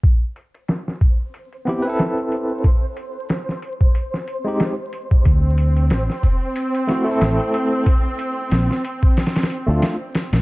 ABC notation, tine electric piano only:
X:1
M:4/4
L:1/16
Q:"Swing 16ths" 1/4=92
K:Am
V:1 name="Tine electric piano"
z8 z2 [B,CEG] [CEAB]4- [CEAB] | z8 z3 [^G,^B,^D=G]2 z3 | z8 z2 [A,CE^F] [A,CEA]4- [A,CEA] | z8 z3 [A,CDF]2 z3 |]